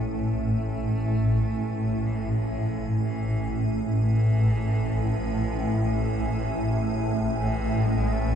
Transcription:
Already playing: A1 A2 A3 G#5
0.13 A3
2.07 E3
2.30 F3
3.04 E3
3.98 E3
4.98 F3
5.92 E3
7.39 E3
7.86 G#3
8.12 A3

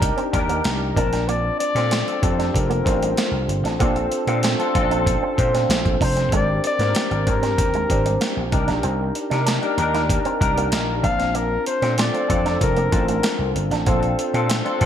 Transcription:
Already playing: D4 D#4 G4 A#4
0.02 kick, closed hi-hat
0.17 C4, closed hi-hat
0.33 D#2 D4 D#4 G4 A#4, muted clean electric guitar stroke, kick, closed hi-hat
0.49 A#3, closed hi-hat
0.64 C2, muted clean electric guitar stroke, snare, closed hi-hat
0.96 A#1 C4 D4 F4 A#4 A5, kick, closed hi-hat
1.13 C4, snare, closed hi-hat
1.29 A#3 D5, closed hi-hat
1.60 D5, muted clean electric guitar stroke, closed hi-hat
1.75 A#2 C4 D4 F4 A4, snare, closed hi-hat
1.91 C4, snare, closed hi-hat
2.06 C4 D4 F4 A4, muted clean electric guitar stroke, closed hi-hat
2.22 F2 C4 D4 F4 G4 A4, kick, closed hi-hat
2.39 D4, snare, closed hi-hat
2.54 F1 A#4, kick, closed hi-hat
2.70 A#3, closed hi-hat
2.84 A1 C4 D4 F4 C5, muted clean electric guitar stroke, kick, closed hi-hat
3.02 G3, closed hi-hat
3.17 A#3, snare, closed hi-hat
3.31 C2
3.48 G1, muted clean electric guitar stroke, closed hi-hat
3.63 A1 D4, snare, closed hi-hat
3.79 A#1 A#3 C4 D4 F4 A4, kick, closed hi-hat
3.96 closed hi-hat
4.12 muted clean electric guitar stroke, closed hi-hat
4.27 A#2 A#3 C4 D4 F4 A4, closed hi-hat
4.43 C4, snare, closed hi-hat
4.59 C4 D4 F4 A4, muted clean electric guitar stroke, closed hi-hat
4.74 A#1 C4 C#4 F4 A4, kick, closed hi-hat
4.81 D4
4.91 D4, closed hi-hat
5.07 kick, closed hi-hat
5.23 C4
5.37 A#2 C4 D4 F4 C5, muted clean electric guitar stroke, kick, closed hi-hat
5.54 C4, snare, closed hi-hat
5.69 A#1, muted clean electric guitar stroke, snare, closed hi-hat
5.85 kick, closed hi-hat
6.01 F1 D4 C5, kick, open hi-hat
6.17 C4, snare, closed hi-hat
6.31 G#1 G#3 C4 D4 G4 A#4, kick, closed hi-hat
6.36 D5
6.64 D5, muted clean electric guitar stroke, closed hi-hat
6.79 G#2 A#3 C4 D4 G4 A#4, snare, closed hi-hat
6.95 A#3, snare, closed hi-hat
7.11 G#1 C4 D4 G4 A#4, muted clean electric guitar stroke, closed hi-hat
7.26 G#2 C4 D4 G4 A#4, kick, closed hi-hat
7.30 A#4
7.42 C4, snare, closed hi-hat
7.58 D#2, kick, closed hi-hat
7.74 G#3, closed hi-hat
7.90 G#1 C4 D4 G4 C5, muted clean electric guitar stroke, kick, closed hi-hat
8.06 G3, closed hi-hat
8.21 A#3, snare, closed hi-hat
8.37 A#1
8.52 C2 D4 D#4 G4 A#4, muted clean electric guitar stroke, kick, closed hi-hat
8.67 A#1 D4, snare, closed hi-hat
8.83 C2 C4, closed hi-hat
9.15 muted clean electric guitar stroke, closed hi-hat
9.30 C3 D4 D#4 G4 A#4, snare, closed hi-hat
9.46 D4, snare, closed hi-hat
9.62 D4 D#4 G4 A#4, muted clean electric guitar stroke, closed hi-hat
9.78 D#2 D4 D#4 G4 A#4, closed hi-hat
9.94 D#4, snare, closed hi-hat
10.10 kick, closed hi-hat
10.25 C4, closed hi-hat
10.40 C2 D4 D#4 G4 A#4, muted clean electric guitar stroke, kick, closed hi-hat
10.58 A#3, closed hi-hat
10.72 A#1, muted clean electric guitar stroke, snare, closed hi-hat
11.03 A#1 C4 D4 F4 F5 A5, kick, closed hi-hat
11.19 C4, snare, closed hi-hat
11.35 A#3 A#4, closed hi-hat
11.66 C5, muted clean electric guitar stroke, closed hi-hat
11.82 A#2 C4 D4 F4 A4, snare, closed hi-hat
11.98 C4 D5, snare, closed hi-hat
12.14 C4 D4 F4 A4, muted clean electric guitar stroke, closed hi-hat
12.28 F2 C4 D4 F4 A4, kick, closed hi-hat
12.46 D4, snare, closed hi-hat
12.61 F1 A#4, kick, closed hi-hat
12.77 A#3, closed hi-hat
12.91 A1 C4 D4 F4 A5, muted clean electric guitar stroke, kick, closed hi-hat
13.08 A3 A#4, closed hi-hat
13.23 A#3, snare, closed hi-hat
13.39 C2
13.55 G1, muted clean electric guitar stroke, closed hi-hat
13.71 A1 D4, snare, closed hi-hat
13.86 A#1 A#3 C4 D4 F4 A4, kick, closed hi-hat
14.03 closed hi-hat
14.19 muted clean electric guitar stroke, closed hi-hat
14.33 A#2 C4 D4 F4 A4, closed hi-hat
14.49 C4, snare, closed hi-hat
14.64 C4 D4 F4 A4, muted clean electric guitar stroke, closed hi-hat
14.80 A#2 C4 D4 F4 A4, kick, closed hi-hat

